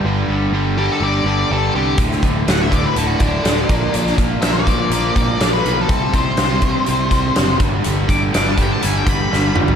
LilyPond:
<<
  \new Staff \with { instrumentName = "Lead electric guitar" } { \time 4/4 \key g \major \tempo 4 = 123 r4. g'16 a'16 d''4 a'8 g'8 | r4 fis''16 e''16 d''16 b'16 a'16 fis'16 d'4.~ | d'8 r8 e''16 d''2 b'8 a'16~ | a'8 c''2. r8 |
r8 d'''16 r16 d'''16 a''16 g''16 a''16 gis''16 g''16 b''4 r8 | }
  \new Staff \with { instrumentName = "Overdriven electric guitar" } { \clef bass \time 4/4 \key g \major <g, d g>8 <g, d g>8 <g, d g>8 <g, d g>8 <g, d g>8 <g, d g>8 <g, d g>8 <g, d g>8 | <d, a, d>8 <d, a, d>8 <d, a, d>8 <d, a, d>8 <d, a, d>8 <d, a, d>8 <d, a, d>8 <bes, f bes>8 | <bes, f bes>8 <bes, f bes>8 <bes, f bes>8 <bes, f bes>8 <bes, f bes>8 <bes, f bes>8 <bes, f bes>8 <bes, f bes>8 | <c g c'>8 <c g c'>8 <c g c'>8 <c g c'>8 <c g c'>8 <c g c'>8 <c g c'>8 <g, d g>8 |
<g, d g>8 <g, d g>8 <g, d g>8 <g, d g>8 <g, d g>8 <g, d g>8 <g, d g>8 <g, d g>8 | }
  \new Staff \with { instrumentName = "Picked electric bass" } { \clef bass \time 4/4 \key g \major g,,8 g,,8 g,,4 g,,8 g,,8 g,,8 c,8 | d,,8 d,,8 d,,4 d,,8 d,,8 d,,8 bes,,8 | bes,,8 bes,,8 bes,,4 bes,,8 bes,,8 bes,,8 b,,8 | c,8 c,8 c,4 c,8 c,8 fis,,8 g,,8 |
g,,8 g,,8 g,,4 g,,8 g,,8 g,,8 g,,8 | }
  \new DrumStaff \with { instrumentName = "Drums" } \drummode { \time 4/4 r4 r4 r4 r4 | <hh bd>16 sn16 <hh bd>8 <hh sn>8 <hh bd>8 hh8 <hh bd>8 <hh sn>8 <hh bd>8 | hh16 sn16 <hh bd>8 <hh sn>8 <hh bd>8 hh8 <hh bd>8 <hh sn>8 hh8 | <hh bd>8 <hh bd>8 <hh sn>8 <hh bd>8 hh8 <hh bd>8 <hh sn>8 <hh bd>8 |
hh8 <hh bd>8 <hh sn>8 <hh bd>8 hh8 <hh bd>8 sn8 toml16 tomfh16 | }
>>